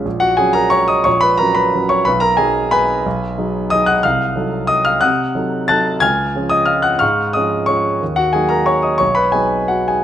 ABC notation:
X:1
M:3/4
L:1/8
Q:1/4=180
K:F#
V:1 name="Grand piano"
z [Ff] [Gg] [Aa] [cc'] [dd'] | [cc'] [Bb] [Aa] [Bb]2 [cc'] | [Bb] [Aa] [Gdg]2 [Bgb]2- | [Bgb]4 [dd'] [ff'] |
[ee']4 [_e_e'] [^e^e'] | [_g_e'_g']4 [=ag'=a']2 | [ge'g']3 [dd'] [ee'] [ff'] | [ec'e']2 [dd']2 [cc'] z |
z [Ff] [Gg] [Aa] [cc'] [dd'] | [cc'] [Bb] [Gdg]2 [Ff] [Gg] |]
V:2 name="Grand piano"
A,,,2 [F,CF]4 | A,,,2 [F,CF]2 [F,CF]2 | B,,,2 [F,D]4 | B,,,2 [F,DG]2 [F,DG]2 |
=C,,2 [_G,_E=A]4 | =C,2 [_G,_E=A]2 [G,EA]2 | C,,2 [E,CG]4 | G,,2 [E,CG]2 [E,CG]2 |
D,,2 [F,A,D]4 | B,,,2 [F,B,D]4 |]